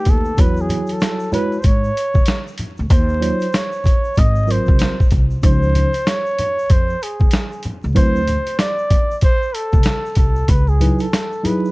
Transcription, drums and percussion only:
0.05 kick, closed hi-hat, low conga, shaker
0.25 shaker
0.37 kick, closed hi-hat, shaker
0.56 shaker
0.69 closed hi-hat, low conga, shaker
0.87 closed hi-hat, shaker
1.00 snare, closed hi-hat, shaker
1.19 shaker
1.32 closed hi-hat, low conga, shaker
1.52 shaker
1.63 kick, closed hi-hat, shaker
1.84 shaker
1.97 closed hi-hat, shaker
2.14 kick, high conga, shaker
2.26 snare, closed hi-hat, shaker
2.47 shaker
2.58 closed hi-hat, low conga, shaker
2.77 shaker
2.90 kick, closed hi-hat, shaker
3.09 shaker
3.22 closed hi-hat, shaker
3.40 closed hi-hat, shaker
3.53 snare, closed hi-hat, shaker
3.72 shaker
3.84 kick, closed hi-hat, low conga, shaker
4.04 shaker
4.14 kick, closed hi-hat, shaker
4.35 shaker
4.47 closed hi-hat, shaker
4.66 kick, high conga, shaker
4.79 snare, closed hi-hat, shaker
5.00 kick, shaker
5.11 kick, closed hi-hat, low conga, shaker
5.30 shaker
5.43 kick, closed hi-hat, shaker
5.62 shaker
5.75 closed hi-hat, low conga, shaker
5.94 closed hi-hat, shaker
6.06 snare, closed hi-hat, shaker
6.26 shaker
6.38 closed hi-hat, low conga, shaker
6.59 shaker
6.69 kick, closed hi-hat, shaker
6.90 shaker
7.02 closed hi-hat, shaker
7.20 kick, high conga, shaker
7.31 snare, closed hi-hat, shaker
7.52 shaker
7.63 closed hi-hat, low conga, shaker
7.83 shaker
7.96 kick, closed hi-hat, shaker
8.16 shaker
8.27 closed hi-hat, low conga, shaker
8.46 closed hi-hat, shaker
8.59 snare, closed hi-hat, shaker
8.78 shaker
8.90 kick, closed hi-hat, low conga, shaker
9.11 shaker
9.21 kick, closed hi-hat, shaker
9.42 shaker
9.54 closed hi-hat, shaker
9.73 kick, high conga, shaker
9.83 snare, closed hi-hat, shaker
10.06 shaker
10.15 kick, closed hi-hat, low conga, shaker
10.36 shaker
10.48 kick, closed hi-hat, shaker
10.68 shaker
10.81 closed hi-hat, low conga, shaker
10.99 closed hi-hat, shaker
11.13 snare, closed hi-hat, shaker
11.32 shaker
11.45 closed hi-hat, low conga, shaker
11.65 shaker

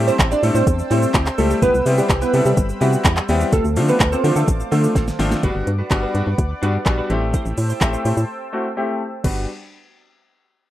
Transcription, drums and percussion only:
0.08 shaker
0.19 kick, clap, closed hi-hat, shaker
0.32 shaker
0.43 open hi-hat, shaker
0.55 shaker
0.67 kick, closed hi-hat, shaker
0.79 shaker
0.91 open hi-hat, shaker
1.02 shaker
1.14 kick, clap, closed hi-hat, shaker
1.26 clap, shaker
1.38 open hi-hat, shaker
1.50 shaker
1.62 kick, closed hi-hat, shaker
1.75 shaker
1.86 open hi-hat, shaker
1.98 shaker
2.09 kick, clap, closed hi-hat, shaker
2.22 shaker
2.34 open hi-hat, shaker
2.45 shaker
2.57 kick, closed hi-hat, shaker
2.69 shaker
2.81 open hi-hat, shaker
2.93 shaker
3.05 kick, clap, closed hi-hat, shaker
3.17 clap, shaker
3.29 open hi-hat, shaker
3.41 shaker
3.52 kick, closed hi-hat, shaker
3.65 shaker
3.76 open hi-hat, shaker
3.88 shaker
4.00 kick, clap, closed hi-hat, shaker
4.12 shaker
4.24 open hi-hat, shaker
4.36 shaker
4.48 kick, closed hi-hat, shaker
4.60 shaker
4.72 open hi-hat, shaker
4.84 shaker
4.95 kick, snare, closed hi-hat, shaker
5.08 snare, shaker
5.20 snare, open hi-hat, shaker
5.31 snare, shaker
5.43 kick, closed hi-hat
5.67 closed hi-hat
5.91 kick, clap, closed hi-hat
6.15 closed hi-hat
6.38 kick, closed hi-hat
6.63 closed hi-hat
6.86 kick, clap, closed hi-hat
7.10 closed hi-hat
7.34 kick, closed hi-hat, shaker
7.46 shaker
7.58 open hi-hat, shaker
7.70 shaker
7.81 kick, clap, closed hi-hat, shaker
7.94 shaker
8.05 open hi-hat, shaker
8.17 shaker
9.24 kick, crash

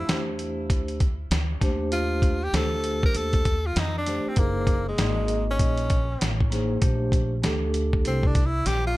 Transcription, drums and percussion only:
0.09 snare, closed hi-hat
0.39 closed hi-hat
0.70 kick, closed hi-hat
0.88 closed hi-hat
1.00 kick, closed hi-hat
1.31 snare, closed hi-hat
1.61 kick, snare, closed hi-hat
1.92 closed hi-hat
2.22 kick, closed hi-hat
2.54 snare, closed hi-hat
2.84 closed hi-hat
3.03 kick
3.15 closed hi-hat
3.33 kick, closed hi-hat
3.45 kick, closed hi-hat
3.76 snare, closed hi-hat
4.06 snare, closed hi-hat
4.36 kick, closed hi-hat
4.67 kick, closed hi-hat
4.98 snare, closed hi-hat
5.28 closed hi-hat
5.59 kick, closed hi-hat
5.77 closed hi-hat
5.90 kick, closed hi-hat
6.21 snare, closed hi-hat
6.40 kick
6.52 snare, closed hi-hat
6.82 kick, closed hi-hat
7.12 kick, closed hi-hat
7.43 snare, closed hi-hat
7.74 closed hi-hat
7.93 kick
8.05 closed hi-hat
8.23 kick
8.35 kick, closed hi-hat
8.66 snare, closed hi-hat

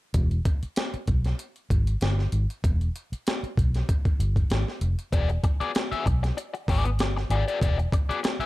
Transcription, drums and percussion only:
0.14 kick, closed hi-hat
0.31 closed hi-hat
0.45 kick, closed hi-hat
0.63 closed hi-hat
0.76 snare, closed hi-hat
0.94 closed hi-hat
1.07 kick, closed hi-hat
1.25 snare, closed hi-hat
1.39 closed hi-hat
1.56 closed hi-hat
1.70 kick, closed hi-hat
1.87 closed hi-hat
2.01 snare, closed hi-hat
2.19 snare
2.32 closed hi-hat
2.50 closed hi-hat
2.64 kick, closed hi-hat
2.81 closed hi-hat
2.96 closed hi-hat
3.13 closed hi-hat
3.27 snare, closed hi-hat
3.44 closed hi-hat
3.57 kick, closed hi-hat
3.75 snare, closed hi-hat
3.89 kick, closed hi-hat
4.05 kick, closed hi-hat
4.20 closed hi-hat
4.36 kick, closed hi-hat
4.50 snare, closed hi-hat
4.68 snare
4.81 closed hi-hat
4.99 closed hi-hat
5.13 kick, closed hi-hat
5.29 closed hi-hat
5.44 kick, closed hi-hat
5.61 closed hi-hat
5.75 snare, closed hi-hat
5.92 closed hi-hat
6.06 kick, closed hi-hat
6.24 snare, closed hi-hat
6.38 closed hi-hat
6.55 closed hi-hat
6.68 kick, open hi-hat
6.85 closed hi-hat
6.99 snare, closed hi-hat
7.17 snare
7.30 closed hi-hat
7.48 closed hi-hat
7.62 kick, closed hi-hat
7.79 closed hi-hat
7.92 kick, closed hi-hat
8.11 closed hi-hat
8.24 snare, closed hi-hat
8.41 closed hi-hat

